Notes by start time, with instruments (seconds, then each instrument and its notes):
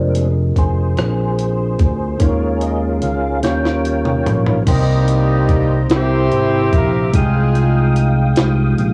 Already playing: fingered electric bass F1, tonewheel organ G#3 C4 D4, tine electric piano D4 F4 G4 G#4 A#4 D#5
0.09 tonewheel organ A#4
0.15 tonewheel organ G#4, closed hi-hat
0.56 fingered electric bass F1, tonewheel organ G#4 C5, kick, closed hi-hat
0.96 fingered electric bass A#1, tine electric piano C4 F4 G#4, cross-stick, closed hi-hat
1.00 tine electric piano D4 A#4
1.39 closed hi-hat
1.79 fingered electric bass D2, kick, closed hi-hat
2.19 fingered electric bass D#2, tine electric piano D#3 C#4 D#4 G#4 A#4, tonewheel organ G#3 C#4 F4 G#4 A#4 C#5, kick, closed hi-hat
2.61 tonewheel organ D#5, closed hi-hat
3.02 fingered electric bass C#2, tonewheel organ F5, closed hi-hat
3.42 fingered electric bass D#2, tine electric piano D#3 C#4 D#4 G4, tonewheel organ G3 C#4 F4 A#4 C#5 G5, snare, closed hi-hat
3.65 snare
3.85 closed hi-hat
4.05 mid tom
4.26 fingered electric bass A#1, closed hi-hat, floor tom
4.46 floor tom
4.64 fingered electric bass C2, tine electric piano C3 C4 D#4 G4 A#4, tonewheel organ C5 D#5, kick, closed hi-hat, crash
4.69 horn section G3 A#3 D#4 G4, tonewheel organ G4 A#5
5.08 closed hi-hat
5.49 kick, closed hi-hat
5.89 fingered electric bass C2, tine electric piano C3 C4 E4 G4 A#4, horn section E4, tonewheel organ G4 E5, snare, closed hi-hat
5.93 horn section C4 G4 C5
6.32 fingered electric bass G#1, closed hi-hat
6.72 fingered electric bass A#1, horn section A#3 A#4, kick, closed hi-hat
7.13 fingered electric bass C2, tine electric piano C3 G#3 D#4 F4 G5, tonewheel organ G#3 F5 G5 D#6, horn section D#4 F4, kick, closed hi-hat
7.18 horn section G#3 G#4
7.55 closed hi-hat
7.96 closed hi-hat
8.36 fingered electric bass C2, tine electric piano G#3 D#4 F4, snare, closed hi-hat
8.40 tine electric piano G4
8.78 fingered electric bass A#1, closed hi-hat